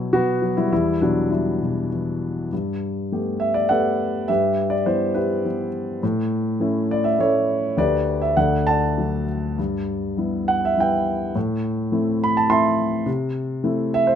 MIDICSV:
0, 0, Header, 1, 2, 480
1, 0, Start_track
1, 0, Key_signature, 1, "major"
1, 0, Tempo, 596421
1, 573, Time_signature, 3, 2, 24, 8
1, 2985, Tempo, 580271
1, 6345, Tempo, 600601
1, 8745, Tempo, 574713
1, 11567, End_track
2, 0, Start_track
2, 0, Title_t, "Grand piano"
2, 0, Program_c, 0, 0
2, 0, Control_c, 0, 64, 127
2, 0, Note_on_c, 0, 47, 55
2, 0, Note_on_c, 0, 54, 47
2, 0, Note_on_c, 0, 64, 65
2, 93, Note_off_c, 0, 47, 0
2, 104, Note_on_c, 0, 66, 92
2, 105, Note_on_c, 0, 47, 37
2, 117, Note_on_c, 0, 59, 70
2, 326, Note_off_c, 0, 54, 0
2, 338, Note_on_c, 0, 54, 49
2, 431, Note_off_c, 0, 66, 0
2, 438, Note_off_c, 0, 59, 0
2, 460, Note_off_c, 0, 64, 0
2, 460, Note_on_c, 0, 64, 75
2, 465, Note_on_c, 0, 55, 57
2, 561, Note_off_c, 0, 47, 0
2, 567, Note_off_c, 0, 54, 0
2, 567, Note_off_c, 0, 64, 0
2, 570, Note_off_c, 0, 55, 0
2, 570, Note_on_c, 0, 40, 61
2, 583, Note_on_c, 0, 64, 78
2, 585, Control_c, 0, 64, 0
2, 586, Note_on_c, 0, 55, 60
2, 731, Control_c, 0, 64, 127
2, 802, Note_off_c, 0, 55, 0
2, 816, Note_on_c, 0, 62, 65
2, 817, Note_on_c, 0, 47, 42
2, 823, Note_off_c, 0, 64, 0
2, 824, Note_on_c, 0, 54, 56
2, 1037, Note_off_c, 0, 62, 0
2, 1041, Note_off_c, 0, 54, 0
2, 1054, Note_on_c, 0, 64, 64
2, 1057, Note_on_c, 0, 55, 45
2, 1285, Note_off_c, 0, 47, 0
2, 1297, Note_on_c, 0, 47, 45
2, 1509, Note_off_c, 0, 64, 0
2, 1544, Note_on_c, 0, 52, 36
2, 1994, Note_off_c, 0, 40, 0
2, 2002, Note_off_c, 0, 55, 0
2, 2008, Note_off_c, 0, 47, 0
2, 2016, Note_off_c, 0, 52, 0
2, 2031, Note_on_c, 0, 43, 53
2, 2038, Control_c, 0, 64, 0
2, 2182, Control_c, 0, 64, 127
2, 2513, Note_on_c, 0, 57, 43
2, 2519, Note_on_c, 0, 59, 33
2, 2520, Note_on_c, 0, 67, 45
2, 2734, Note_on_c, 0, 76, 78
2, 2851, Note_on_c, 0, 74, 76
2, 2864, Note_off_c, 0, 76, 0
2, 2969, Note_off_c, 0, 74, 0
2, 2969, Note_on_c, 0, 78, 78
2, 2971, Note_off_c, 0, 57, 0
2, 2976, Note_off_c, 0, 59, 0
2, 2976, Note_off_c, 0, 67, 0
2, 2981, Note_on_c, 0, 69, 55
2, 2983, Note_on_c, 0, 57, 35
2, 2986, Note_on_c, 0, 71, 56
2, 2989, Note_on_c, 0, 67, 36
2, 2990, Note_on_c, 0, 59, 30
2, 3428, Note_off_c, 0, 78, 0
2, 3434, Note_off_c, 0, 69, 0
2, 3436, Note_off_c, 0, 71, 0
2, 3437, Note_off_c, 0, 43, 0
2, 3454, Note_off_c, 0, 57, 0
2, 3457, Note_off_c, 0, 59, 0
2, 3457, Note_off_c, 0, 67, 0
2, 3457, Note_on_c, 0, 76, 83
2, 3467, Note_on_c, 0, 43, 57
2, 3471, Note_on_c, 0, 67, 55
2, 3473, Note_on_c, 0, 71, 56
2, 3478, Control_c, 0, 64, 0
2, 3646, Control_c, 0, 64, 127
2, 3804, Note_on_c, 0, 74, 75
2, 3833, Note_off_c, 0, 76, 0
2, 3925, Note_off_c, 0, 74, 0
2, 3937, Note_on_c, 0, 55, 48
2, 3938, Note_on_c, 0, 72, 72
2, 3943, Note_on_c, 0, 59, 40
2, 3946, Note_on_c, 0, 64, 48
2, 4150, Note_off_c, 0, 67, 0
2, 4151, Note_off_c, 0, 71, 0
2, 4165, Note_off_c, 0, 64, 0
2, 4172, Note_on_c, 0, 71, 67
2, 4177, Note_on_c, 0, 64, 45
2, 4183, Note_on_c, 0, 67, 49
2, 4186, Note_off_c, 0, 72, 0
2, 4401, Note_off_c, 0, 55, 0
2, 4404, Note_off_c, 0, 59, 0
2, 4419, Note_off_c, 0, 64, 0
2, 4422, Note_on_c, 0, 55, 35
2, 4427, Note_on_c, 0, 59, 39
2, 4431, Note_on_c, 0, 64, 38
2, 4621, Note_off_c, 0, 71, 0
2, 4864, Note_off_c, 0, 43, 0
2, 4866, Note_off_c, 0, 67, 0
2, 4885, Note_off_c, 0, 55, 0
2, 4888, Note_off_c, 0, 59, 0
2, 4890, Note_off_c, 0, 64, 0
2, 4906, Note_on_c, 0, 45, 68
2, 4909, Control_c, 0, 64, 0
2, 5032, Control_c, 0, 64, 127
2, 5378, Note_on_c, 0, 57, 50
2, 5383, Note_on_c, 0, 61, 44
2, 5386, Note_on_c, 0, 64, 51
2, 5635, Note_on_c, 0, 74, 74
2, 5741, Note_on_c, 0, 76, 74
2, 5752, Note_off_c, 0, 74, 0
2, 5847, Note_off_c, 0, 57, 0
2, 5849, Note_off_c, 0, 61, 0
2, 5851, Note_off_c, 0, 64, 0
2, 5864, Note_on_c, 0, 61, 41
2, 5865, Note_off_c, 0, 76, 0
2, 5867, Note_on_c, 0, 57, 39
2, 5872, Note_on_c, 0, 64, 48
2, 5876, Note_on_c, 0, 73, 80
2, 5881, Note_on_c, 0, 69, 53
2, 6317, Note_off_c, 0, 45, 0
2, 6320, Note_off_c, 0, 73, 0
2, 6323, Note_off_c, 0, 69, 0
2, 6332, Note_off_c, 0, 61, 0
2, 6334, Note_off_c, 0, 57, 0
2, 6337, Note_off_c, 0, 64, 0
2, 6344, Note_on_c, 0, 38, 61
2, 6355, Control_c, 0, 64, 0
2, 6355, Note_on_c, 0, 74, 83
2, 6360, Note_on_c, 0, 67, 58
2, 6361, Note_on_c, 0, 71, 59
2, 6482, Control_c, 0, 64, 127
2, 6681, Note_off_c, 0, 74, 0
2, 6700, Note_on_c, 0, 76, 76
2, 6795, Note_off_c, 0, 67, 0
2, 6796, Note_off_c, 0, 71, 0
2, 6805, Note_off_c, 0, 38, 0
2, 6812, Note_off_c, 0, 76, 0
2, 6821, Note_on_c, 0, 38, 61
2, 6821, Note_on_c, 0, 78, 79
2, 6829, Control_c, 0, 64, 0
2, 6838, Note_on_c, 0, 69, 52
2, 6841, Note_on_c, 0, 74, 55
2, 6954, Control_c, 0, 64, 127
2, 7060, Note_off_c, 0, 78, 0
2, 7061, Note_on_c, 0, 81, 89
2, 7063, Note_off_c, 0, 74, 0
2, 7072, Note_on_c, 0, 78, 57
2, 7075, Note_on_c, 0, 74, 60
2, 7307, Note_on_c, 0, 54, 32
2, 7315, Note_on_c, 0, 57, 27
2, 7320, Note_on_c, 0, 62, 36
2, 7522, Note_off_c, 0, 81, 0
2, 7531, Note_off_c, 0, 69, 0
2, 7770, Note_off_c, 0, 38, 0
2, 7772, Note_off_c, 0, 78, 0
2, 7773, Note_off_c, 0, 74, 0
2, 7783, Note_off_c, 0, 54, 0
2, 7788, Note_off_c, 0, 57, 0
2, 7790, Note_off_c, 0, 62, 0
2, 7794, Note_on_c, 0, 43, 56
2, 7808, Control_c, 0, 64, 0
2, 7926, Control_c, 0, 64, 127
2, 8263, Note_on_c, 0, 55, 45
2, 8272, Note_on_c, 0, 59, 36
2, 8273, Note_on_c, 0, 64, 44
2, 8510, Note_on_c, 0, 78, 82
2, 8631, Note_off_c, 0, 78, 0
2, 8646, Note_on_c, 0, 76, 76
2, 8725, Note_off_c, 0, 55, 0
2, 8730, Note_off_c, 0, 59, 0
2, 8730, Note_off_c, 0, 64, 0
2, 8742, Note_on_c, 0, 55, 36
2, 8744, Note_on_c, 0, 59, 34
2, 8748, Note_off_c, 0, 76, 0
2, 8748, Note_on_c, 0, 64, 42
2, 8770, Note_on_c, 0, 79, 84
2, 8773, Note_on_c, 0, 76, 58
2, 8778, Note_on_c, 0, 71, 52
2, 9196, Note_off_c, 0, 43, 0
2, 9211, Note_off_c, 0, 79, 0
2, 9212, Note_off_c, 0, 76, 0
2, 9215, Note_off_c, 0, 55, 0
2, 9215, Note_off_c, 0, 71, 0
2, 9216, Note_off_c, 0, 59, 0
2, 9218, Note_off_c, 0, 64, 0
2, 9230, Note_on_c, 0, 45, 63
2, 9243, Control_c, 0, 64, 0
2, 9382, Control_c, 0, 64, 127
2, 9703, Note_on_c, 0, 57, 50
2, 9707, Note_on_c, 0, 60, 44
2, 9708, Note_on_c, 0, 64, 55
2, 9966, Note_on_c, 0, 83, 86
2, 10078, Note_on_c, 0, 81, 83
2, 10080, Note_off_c, 0, 83, 0
2, 10169, Note_off_c, 0, 57, 0
2, 10171, Note_off_c, 0, 60, 0
2, 10172, Note_off_c, 0, 64, 0
2, 10183, Note_on_c, 0, 57, 38
2, 10184, Note_off_c, 0, 81, 0
2, 10185, Note_on_c, 0, 60, 41
2, 10185, Note_on_c, 0, 84, 91
2, 10191, Note_on_c, 0, 64, 45
2, 10198, Note_on_c, 0, 81, 65
2, 10199, Note_on_c, 0, 76, 63
2, 10629, Note_off_c, 0, 45, 0
2, 10629, Note_off_c, 0, 84, 0
2, 10636, Note_off_c, 0, 76, 0
2, 10636, Note_off_c, 0, 81, 0
2, 10647, Note_off_c, 0, 57, 0
2, 10648, Note_off_c, 0, 60, 0
2, 10651, Note_off_c, 0, 64, 0
2, 10656, Note_on_c, 0, 48, 68
2, 10675, Control_c, 0, 64, 0
2, 10832, Control_c, 0, 64, 127
2, 11136, Note_on_c, 0, 57, 52
2, 11141, Note_on_c, 0, 60, 45
2, 11142, Note_on_c, 0, 64, 54
2, 11390, Note_on_c, 0, 76, 95
2, 11498, Note_on_c, 0, 72, 81
2, 11500, Note_off_c, 0, 76, 0
2, 11567, Note_off_c, 0, 48, 0
2, 11567, Note_off_c, 0, 57, 0
2, 11567, Note_off_c, 0, 60, 0
2, 11567, Note_off_c, 0, 64, 0
2, 11567, Note_off_c, 0, 72, 0
2, 11567, End_track
0, 0, End_of_file